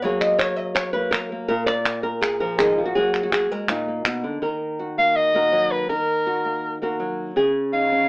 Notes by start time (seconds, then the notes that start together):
0.02 F#3 A#3 G#4 C#5
0.21 D#5, clap
0.39 C#5, clap
0.56 D#5
0.75 C#5, clap
0.93 A#3 B4
1.11 A#4, clap
1.32 A#3
1.48 A#2 A#4
1.66 D5, clap
1.86 clap
2.03 A#4
2.21 G#4, clap
2.40 F3 A#4
2.58 D#3 G#4, clap
2.78 F3
2.85 F#4
2.95 F#3 A#3 F#4 G#4
3.14 clap
3.23 F#4
3.33 F#3 G#4, clap
3.51 G#3 A#4
3.69 A#2 D#4, clap
3.88 A#3
4.05 B2, clap
4.24 D3
4.42 D#3 A#4
4.79 F#4
4.98 A#3 F5
5.16 D#5
5.34 A#3 F#4 A#4
5.52 F#3
5.71 B4
5.89 D#3 A#4
6.27 F#4
6.45 A#3
6.82 A#3 F#4 A#4
7.00 F#3
7.36 C#3 G#4
7.73 D#4 F5
7.92 C#4